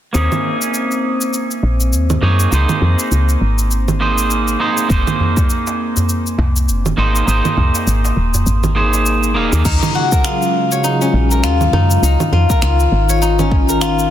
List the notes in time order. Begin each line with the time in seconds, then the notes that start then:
0.13 D#2 A#3 C4 C#4 D#4 G#4 C5, shaker
0.32 low conga, shaker
0.62 shaker
0.74 shaker
0.91 shaker
1.21 shaker
1.33 shaker
1.51 shaker
1.63 A#1
1.81 shaker
1.93 D#2, shaker
2.10 low conga, shaker
2.21 F#2 A#3 D#4 G#4 C#5
2.40 shaker
2.50 C#2 A#3 D#4 G#4 C5, shaker
2.69 low conga, shaker
2.82 F2
2.99 shaker
3.12 C#2, shaker
3.29 shaker
3.41 G#1
3.59 shaker
3.71 shaker
3.88 low conga, shaker
4.00 A#3 D#4 G#4 C5
4.18 shaker
4.30 shaker
4.48 shaker
4.59 A#3 D#4 G#4 C5
4.78 shaker
4.88 F1 A#3 D#4 G#4, kick, shaker
4.92 C5
5.07 low conga, shaker
5.20 darbuka dum
5.37 kick, darbuka tek, shaker
5.50 shaker
5.67 darbuka tek, shaker
5.97 darbuka dum, shaker
6.09 shaker
6.27 shaker
6.38 C2, darbuka tek, darbuka dum
6.56 shaker
6.68 F1, shaker
6.86 low conga, shaker
6.97 G#1 A#3 D#4 G#4 C5, darbuka tek
7.16 shaker
7.25 G#1 A#3 D#4 G#4 C5, shaker
7.45 low conga, shaker
7.57 C2, darbuka dum
7.75 darbuka tek, shaker
7.87 G#1, shaker
8.05 darbuka tek, shaker
8.16 D#1
8.34 darbuka ka, darbuka dum, shaker
8.46 G#1, darbuka ka, shaker
8.64 low conga, shaker
8.75 A#3 D#4 G#4 C5
8.93 darbuka ka, shaker
9.06 shaker
9.23 shaker
9.34 D#1 A#3 D#4 G#4 F5
9.53 D#2, darbuka ka, shaker
9.65 D#2 C#3 F#3 G#3 D#4 F4, kick, crash, shaker
9.83 low conga, shaker
9.95 F#4
10.12 A#4, kick, shaker
10.24 F4, finger snap, shaker
10.42 shaker
10.72 C#5, shaker
10.84 D#4, shaker
11.01 C#4, shaker
11.14 A#1
11.31 A#4, shaker
11.43 D#2 F4, finger snap, shaker
11.61 low conga, shaker
11.73 F#2 D#4, low conga
11.91 shaker
12.03 C#2 D#3 D#4, shaker
12.20 low conga, shaker
12.32 F2 F4
12.50 A#4, kick, shaker
12.62 C#2 F4, finger snap, shaker
12.80 shaker
12.92 G#1
13.09 C#5, shaker
13.22 D#4, shaker
13.39 C#4, low conga, shaker
13.51 kick
13.69 A#4, shaker
13.81 F4, finger snap, shaker
13.99 shaker